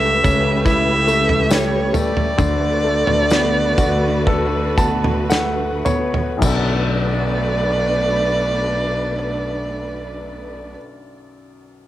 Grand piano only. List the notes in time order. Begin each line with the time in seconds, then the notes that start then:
Already playing: C#3 G3 A3
0.24 C#4
0.65 E4
1.07 A3
1.50 G3
1.93 A3
2.38 D3
2.84 A3
3.31 B3
3.78 F#4
4.27 A4
4.77 B3 A5
5.30 A3 F#5
5.85 B3 C#5
6.37 B1 F#2 D3
6.42 B3 F#4 A4